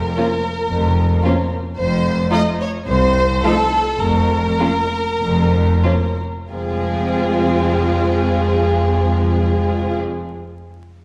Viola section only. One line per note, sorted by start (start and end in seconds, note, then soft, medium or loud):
0.18 0.26 F3 soft
0.18 0.27 A#3 soft
1.25 1.33 F3 soft
1.25 1.33 A#3 soft
2.33 2.41 F3 soft
2.33 2.41 A3 soft
3.44 3.53 F3 soft
3.44 3.52 A3 soft
4.59 4.67 F3 soft
4.59 4.68 A#3 soft
5.85 5.94 F3 soft
5.85 5.93 A#3 soft
6.51 9.99 F3 soft
6.51 9.99 G#3 soft